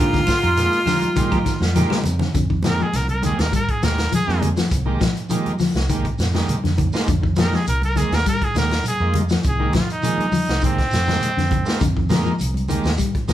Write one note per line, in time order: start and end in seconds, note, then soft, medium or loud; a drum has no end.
0.00 0.22 D3 loud
0.00 0.16 G#3 medium
0.00 0.21 G#3 medium
0.00 0.21 A#3 medium
0.00 0.16 D#4 medium
0.00 0.21 D#4 medium
0.00 2.01 F4 loud
0.00 2.02 F4 medium
0.00 0.17 G4 medium
0.00 0.21 G4 medium
0.00 0.17 A#4 medium
0.12 0.30 D#3 medium
0.12 kick medium
0.12 snare soft
0.12 closed hi-hat soft
0.12 low conga medium
0.12 shekere soft
0.27 kick medium
0.27 snare medium
0.27 closed hi-hat medium
0.27 high conga loud
0.27 claves medium
0.27 shekere medium
0.42 0.67 F2 medium
0.42 0.61 D#4 medium
0.42 0.61 G4 medium
0.42 0.60 A#4 medium
0.42 muted clean electric guitar stroke medium
0.42 closed hi-hat soft
0.42 shekere soft
0.56 0.80 G#3 medium
0.56 0.80 A#3 medium
0.56 0.80 D#4 medium
0.56 0.80 F4 medium
0.56 snare soft
0.56 closed hi-hat medium
0.56 high conga soft
0.56 shekere medium
0.72 closed hi-hat soft
0.72 shekere soft
0.86 1.03 D3 medium
0.86 1.10 F3 medium
0.86 1.05 G#3 medium
0.86 1.05 D#4 medium
0.86 1.05 G4 medium
0.86 1.05 A#4 medium
0.86 snare soft
0.86 open hi-hat medium
0.86 low conga medium
0.86 claves medium
0.86 shekere medium
1.02 closed hi-hat soft
1.02 high conga medium
1.02 shekere soft
1.16 1.32 D#3 medium
1.16 1.39 G#3 medium
1.16 1.39 A#3 medium
1.16 1.39 D#4 medium
1.16 1.40 G4 loud
1.16 kick medium
1.16 closed hi-hat medium
1.16 high conga loud
1.16 shekere loud
1.31 1.43 F3 medium
1.31 1.49 D#4 medium
1.31 1.49 G4 medium
1.31 1.49 A#4 medium
1.31 kick medium
1.31 closed hi-hat soft
1.31 high conga medium
1.31 claves medium
1.31 shekere soft
1.45 1.61 D#3 medium
1.45 kick medium
1.45 snare soft
1.45 closed hi-hat soft
1.45 shekere medium
1.60 1.85 F2 medium
1.60 snare medium
1.60 high conga medium
1.60 shekere soft
1.75 1.84 F3 medium
1.75 1.93 G#3 medium
1.75 1.98 G#3 medium
1.75 1.98 A#3 medium
1.75 1.94 D#4 medium
1.75 1.99 D#4 medium
1.75 1.94 G4 medium
1.75 1.99 G4 loud
1.75 1.94 A#4 medium
1.75 snare soft
1.75 closed hi-hat medium
1.75 low conga medium
1.75 shekere medium
1.90 2.07 G3 medium
1.90 snare medium
1.90 low conga medium
1.90 claves medium
1.90 shekere soft
2.04 2.28 F2 medium
2.04 closed hi-hat soft
2.04 low conga medium
2.04 shekere medium
2.19 2.28 D#3 medium
2.19 snare soft
2.19 low conga medium
2.19 shekere soft
2.33 2.82 F2 medium
2.33 2.43 D3 medium
2.33 kick medium
2.33 closed hi-hat medium
2.33 high conga soft
2.33 shekere medium
2.50 2.58 D#3 medium
2.50 kick medium
2.63 2.73 F3 medium
2.63 2.87 G#3 medium
2.63 2.87 A#3 medium
2.63 2.87 D#4 medium
2.63 2.87 G4 medium
2.63 snare medium
2.63 closed hi-hat soft
2.63 high conga medium
2.63 low conga medium
2.63 shekere medium
2.67 2.84 A#4 medium
2.80 2.96 F3 medium
2.80 2.98 G#4 medium
2.80 shekere soft
2.93 3.29 C2 medium
2.93 3.09 A#4 medium
2.93 snare soft
2.93 closed hi-hat medium
2.93 high conga soft
2.93 shekere medium
3.08 3.23 A#4 medium
3.08 closed hi-hat soft
3.08 high conga medium
3.22 3.39 D#3 medium
3.22 3.45 G#3 medium
3.22 3.46 A#3 medium
3.22 3.45 D#4 medium
3.22 3.46 G4 medium
3.22 3.42 G#4 medium
3.22 closed hi-hat medium
3.22 high conga medium
3.22 low conga medium
3.22 shekere medium
3.39 3.50 D#2 medium
3.39 3.53 A#4 medium
3.39 snare medium
3.39 closed hi-hat soft
3.39 high conga soft
3.39 shekere soft
3.52 3.68 G3 medium
3.52 3.72 A#4 medium
3.52 kick medium
3.52 closed hi-hat medium
3.52 shekere medium
3.69 3.86 G#4 medium
3.69 muted fingered electric bass stroke soft
3.69 kick medium
3.69 closed hi-hat soft
3.82 4.06 D#2 medium
3.82 3.99 D#3 medium
3.82 4.00 G#3 medium
3.82 4.00 A#3 medium
3.82 4.00 D#4 medium
3.82 4.00 G4 medium
3.82 4.12 A#4 medium
3.82 snare medium
3.82 closed hi-hat medium
3.82 shekere medium
3.98 snare medium
3.98 closed hi-hat soft
3.98 high conga medium
3.98 shekere soft
4.12 4.28 F3 medium
4.12 4.42 G#4 medium
4.12 closed hi-hat medium
4.12 high conga medium
4.12 low conga medium
4.12 shekere medium
4.27 4.62 F2 medium
4.27 4.49 G#3 medium
4.27 4.49 A#3 medium
4.27 4.49 D#4 medium
4.27 4.49 G#4 medium
4.27 snare soft
4.41 4.50 G3 medium
4.41 closed hi-hat medium
4.41 high conga medium
4.41 low conga medium
4.41 shekere soft
4.57 4.73 F3 medium
4.57 snare medium
4.57 closed hi-hat soft
4.57 shekere medium
4.71 4.95 C2 medium
4.71 kick medium
4.71 closed hi-hat medium
4.71 shekere medium
4.85 4.94 D#3 medium
4.85 5.02 G#3 medium
4.85 5.02 A#3 medium
4.85 5.02 D#4 medium
4.85 5.02 G4 medium
5.01 5.17 F3 medium
5.01 kick medium
5.01 snare medium
5.01 closed hi-hat medium
5.01 high conga medium
5.01 shekere medium
5.16 closed hi-hat soft
5.16 shekere soft
5.29 5.46 D#3 medium
5.29 5.53 F3 medium
5.29 5.52 G#3 medium
5.29 5.53 A#3 medium
5.29 5.53 D#4 medium
5.29 5.53 G4 medium
5.29 closed hi-hat medium
5.29 high conga soft
5.29 shekere medium
5.46 closed hi-hat soft
5.46 high conga medium
5.59 5.76 F3 medium
5.59 snare soft
5.59 open hi-hat medium
5.59 low conga medium
5.59 shekere medium
5.74 6.09 C2 medium
5.74 snare medium
5.74 closed hi-hat soft
5.74 high conga soft
5.74 shekere soft
5.89 6.05 D#3 medium
5.89 6.06 G#3 medium
5.89 6.07 A#3 medium
5.89 6.07 D#4 medium
5.89 6.07 G4 medium
5.89 kick medium
5.89 closed hi-hat medium
5.89 shekere medium
6.05 kick medium
6.05 closed hi-hat soft
6.19 6.42 F2 medium
6.19 snare medium
6.19 closed hi-hat soft
6.19 shekere medium
6.34 6.50 D#3 medium
6.34 6.56 G#3 medium
6.34 6.56 A#3 medium
6.34 6.56 D#4 medium
6.34 6.57 G4 medium
6.34 snare medium
6.34 closed hi-hat soft
6.34 high conga medium
6.34 shekere soft
6.48 closed hi-hat medium
6.48 high conga medium
6.48 low conga medium
6.48 shekere medium
6.64 6.87 F2 medium
6.64 6.71 D3 medium
6.64 snare soft
6.64 closed hi-hat soft
6.77 6.94 D#3 medium
6.77 kick medium
6.77 closed hi-hat soft
6.77 high conga medium
6.77 low conga medium
6.77 shekere soft
6.93 7.09 G#3 loud
6.93 7.09 A#3 medium
6.93 7.10 D#4 medium
6.93 7.10 F4 loud
6.93 snare medium
6.93 shekere medium
7.07 7.55 F2 medium
7.07 7.16 D3 medium
7.07 kick medium
7.07 closed hi-hat medium
7.07 high conga soft
7.07 shekere medium
7.23 7.30 D#3 medium
7.23 kick medium
7.36 7.45 F3 medium
7.36 7.60 G#3 medium
7.36 7.60 A#3 medium
7.36 7.60 D#4 medium
7.36 7.60 G4 medium
7.36 snare medium
7.36 closed hi-hat soft
7.36 high conga medium
7.36 shekere medium
7.40 7.57 A#4 medium
7.52 7.69 F3 medium
7.52 7.67 G#4 medium
7.52 snare soft
7.52 shekere soft
7.67 8.03 C2 medium
7.67 7.82 A#4 medium
7.67 closed hi-hat medium
7.67 high conga soft
7.67 shekere medium
7.82 7.99 A#4 medium
7.82 closed hi-hat soft
7.82 high conga medium
7.96 8.12 D#3 medium
7.96 8.19 G#3 medium
7.96 8.19 A#3 medium
7.96 8.19 D#4 medium
7.96 8.16 G#4 medium
7.96 8.19 G#4 medium
7.96 closed hi-hat soft
7.96 high conga medium
7.96 low conga medium
7.96 shekere medium
8.11 8.23 D#2 medium
8.11 8.26 A#4 medium
8.11 snare medium
8.11 closed hi-hat soft
8.11 high conga soft
8.11 shekere soft
8.26 8.42 G3 medium
8.26 8.46 A#4 medium
8.26 kick medium
8.26 closed hi-hat medium
8.26 shekere medium
8.42 8.56 G#4 medium
8.42 muted fingered electric bass stroke soft
8.42 kick medium
8.42 closed hi-hat soft
8.55 8.79 D#2 medium
8.55 8.72 D#3 medium
8.55 8.72 G#3 medium
8.55 8.73 A#3 medium
8.55 8.73 D#4 medium
8.55 8.73 G4 medium
8.55 8.86 A#4 medium
8.55 snare medium
8.55 closed hi-hat soft
8.55 shekere medium
8.70 snare medium
8.70 closed hi-hat soft
8.70 high conga medium
8.70 shekere soft
8.84 closed hi-hat medium
8.84 high conga medium
8.84 shekere medium
8.88 9.15 G#4 medium
9.00 9.35 F2 medium
9.00 9.22 G#3 medium
9.00 9.22 A#3 medium
9.00 9.23 D#4 medium
9.00 9.23 F4 medium
9.14 9.23 G3 medium
9.14 closed hi-hat medium
9.14 high conga medium
9.14 low conga medium
9.14 shekere soft
9.29 9.46 F3 medium
9.29 snare medium
9.29 closed hi-hat soft
9.29 shekere medium
9.43 9.68 C2 medium
9.43 kick medium
9.43 closed hi-hat medium
9.43 shekere medium
9.48 9.75 G#4 medium
9.59 9.68 D#3 medium
9.59 9.75 G#3 medium
9.59 9.76 A#3 medium
9.59 9.76 D#4 medium
9.59 9.76 G4 medium
9.73 9.90 F3 medium
9.73 9.89 F4 medium
9.73 kick medium
9.73 snare medium
9.73 closed hi-hat medium
9.73 high conga medium
9.73 low conga medium
9.73 shekere medium
9.89 10.62 D#4 medium
9.89 closed hi-hat soft
9.89 shekere soft
10.02 10.19 D#3 medium
10.02 10.27 F3 medium
10.02 10.26 G#3 medium
10.02 10.26 A#3 medium
10.02 10.26 D#4 medium
10.02 10.27 G#4 medium
10.02 closed hi-hat medium
10.02 high conga soft
10.02 shekere medium
10.18 closed hi-hat soft
10.18 high conga medium
10.32 10.49 F3 medium
10.32 open hi-hat medium
10.32 high conga medium
10.32 low conga medium
10.32 shekere medium
10.47 10.83 C2 medium
10.47 snare medium
10.47 closed hi-hat soft
10.47 high conga soft
10.47 shekere soft
10.61 10.79 D#3 medium
10.61 10.79 G#3 medium
10.61 10.80 A#3 medium
10.61 11.79 C4 loud
10.61 10.80 D#4 medium
10.61 10.80 G4 medium
10.61 kick medium
10.61 closed hi-hat medium
10.61 shekere medium
10.78 kick medium
10.78 snare soft
10.78 closed hi-hat soft
10.91 11.16 F2 medium
10.91 snare medium
10.91 closed hi-hat soft
10.91 shekere medium
11.06 11.24 D#3 medium
11.06 11.29 G#3 medium
11.06 11.29 A#3 medium
11.06 11.30 D#4 medium
11.06 11.30 G4 medium
11.06 snare medium
11.06 closed hi-hat soft
11.06 high conga medium
11.06 shekere soft
11.21 closed hi-hat medium
11.21 high conga medium
11.21 shekere medium
11.37 11.61 F2 medium
11.37 11.45 D3 medium
11.37 snare soft
11.37 closed hi-hat soft
11.51 11.67 D#3 medium
11.51 kick medium
11.51 closed hi-hat soft
11.51 high conga medium
11.51 low conga medium
11.51 shekere soft
11.65 11.82 G#3 medium
11.65 11.82 A#3 medium
11.65 11.83 D#4 medium
11.65 11.83 F4 loud
11.65 snare medium
11.65 shekere medium
11.80 12.29 F2 medium
11.80 11.89 D3 medium
11.80 kick medium
11.80 closed hi-hat medium
11.80 shekere medium
11.96 12.04 D#3 medium
11.96 kick medium
12.09 12.19 F3 medium
12.09 12.33 G#3 loud
12.09 12.33 A#3 medium
12.09 12.33 D#4 medium
12.09 12.33 A#4 loud
12.09 snare medium
12.09 closed hi-hat soft
12.09 high conga medium
12.09 low conga medium
12.09 shekere medium
12.26 12.42 F3 medium
12.26 shekere soft
12.39 12.76 C2 medium
12.39 closed hi-hat medium
12.39 high conga soft
12.39 shekere medium
12.54 closed hi-hat soft
12.54 high conga medium
12.68 12.86 D#3 medium
12.68 12.92 G#3 medium
12.68 12.92 A#3 medium
12.68 12.92 D#4 medium
12.68 12.92 G4 loud
12.68 closed hi-hat soft
12.68 low conga medium
12.68 shekere medium
12.84 12.96 D#2 medium
12.84 snare medium
12.84 closed hi-hat soft
12.84 high conga soft
12.84 shekere soft
12.98 13.15 G3 medium
12.98 kick medium
12.98 closed hi-hat medium
12.98 shekere medium
13.15 muted fingered electric bass stroke soft
13.15 kick medium
13.15 closed hi-hat soft
13.28 13.33 D#2 medium
13.28 13.33 D#3 medium
13.28 13.33 G#3 medium
13.28 13.33 A#3 medium
13.28 13.33 D#4 medium
13.28 13.33 A#4 medium
13.28 snare medium
13.28 closed hi-hat soft
13.28 shekere medium